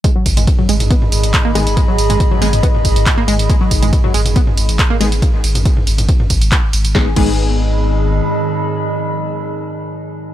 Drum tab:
CC |----------------|----------------|----------------|----------------|
RD |--x---x---x---x-|--x---x---x---x-|--x---x---x---x-|--x---x---x---x-|
HH |x-oxx-oxx-oxx-ox|x-oxx-oxx-oxx-ox|x-oxx-oxx-oxx-ox|x-oxx-oxx-oxx-ox|
TB |x-xxx-xxx-xxx-xx|x-xxx-xxx-xxx-xx|x-xxx-xxx-xxx-xx|x-xxx-xxx-xxx-xx|
CP |------------x---|------------x---|------------x---|------------x---|
SD |----------------|----------------|----------------|----------------|
T2 |---o-o-o-o------|---o-o-o-o------|---o-o-o-o------|---o-o-o-o------|
BD |o-o-o---o---o---|o---o---o-o-o---|o-o-o---o---o---|o---o---o-o-o---|

CC |--x-------------|----------------|
RD |----------------|----------------|
HH |----------------|----------------|
TB |----------------|----------------|
CP |----------------|----------------|
SD |o---------------|----------------|
T2 |----------------|----------------|
BD |o-o-------------|----------------|